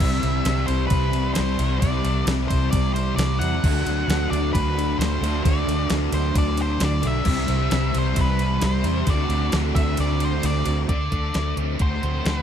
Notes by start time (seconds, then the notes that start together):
Already playing: C3 E5
0.00 C2 E3 G3 C4 E4 G4, kick, crash
0.22 C2 G3 C4, ride
0.45 C2 C3 G3 C4, snare, ride
0.58 snare
0.66 C2 C4 C5, ride
0.71 G3
0.87 C2 C3 B4, ride
0.91 G3 C4, kick
1.12 G3 C4, ride
1.34 C2 C3 G3 C5, snare, ride
1.39 C4
1.58 C2 C3 G3 C4 E4, ride
1.80 C2 C3 G3 C4 E4 D5, kick, ride
2.03 C2 G3 C4, ride
2.26 C2 C3 G3 C4, snare, ride
2.40 snare
2.48 C2 C4 C5, kick, ride
2.53 G3
2.71 C2 C3 G3 D5, kick, ride
2.75 C4
2.94 G3 C4 C5, ride
3.16 C2 C3 G3 D5, snare, ride
3.20 C4
3.39 E2 C3 C4 E4 F#5, ride
3.43 G3
3.54 snare
3.63 D2 D3 F#3 A3 D4 F#4, kick, crash
3.86 D2 A3 D4, ride
4.07 D2 D3 A3 D4, snare, ride
4.29 D2 A3 D4 D5
4.33 ride
4.53 D2 D3 A3 D4 B4, kick, ride
4.77 D4, ride
4.81 A3
4.99 D2 D3 A3 C5, snare, ride
5.03 D4
5.21 D2 D3 F#3 D4, ride
5.26 A3
5.44 D2 D3 F#3 A3 D4 D5, kick, ride
5.67 D2 D4, ride
5.72 A3
5.90 D2 D3 A3 D4, snare, ride
6.11 D2 D4 C5, ride
6.16 A3
6.33 D2 D3 A3 D4, kick, ride
6.38 D5
6.57 A3 D4, ride
6.62 C5
6.80 D2 D3 A3 D4, snare, ride
6.85 D5
7.01 B1 F#3 A3 D4, ride
7.05 D3 E5
7.25 C2 C3 E3 G3 C4 E4, kick, crash
7.47 C2 G3 C4, ride
7.68 C2 C3 G3 C4, snare, ride
7.92 C2 G3 C4, ride
7.98 C5
8.15 C2 C3 G3 C4, kick, ride
8.21 B4
8.37 G3 C4, ride
8.60 C2 C3 G3 C4, snare, ride
8.66 C5
8.82 E2 C3 G3 C4 E4, ride
9.05 D2 D3 A3 C4 D4 F#4, kick, ride
9.10 D5
9.29 D2 A3 D4, ride
9.52 D2 D3 A3 D4, snare, ride
9.74 D2 A3 D4 E5, kick, ride
9.96 D2 D3 A3 D5, ride
10.01 D4
10.19 A3 D4, ride
10.25 C5
10.42 D2 D3 A3 D4, ride
10.46 D5
10.64 D2 D3 A3 C4 D4 F#4, ride
10.89 D2 D3 D5, kick, closed hi-hat
11.11 D2 D3 A3, kick, closed hi-hat
11.34 D2 D3 A3, snare, closed hi-hat
11.57 D2 A3 C4, closed hi-hat
11.79 D2 A3 F#4 C5, kick, closed hi-hat
12.03 D2 C4, closed hi-hat
12.25 D2 D3 F#4 C5, snare, closed hi-hat
12.38 B4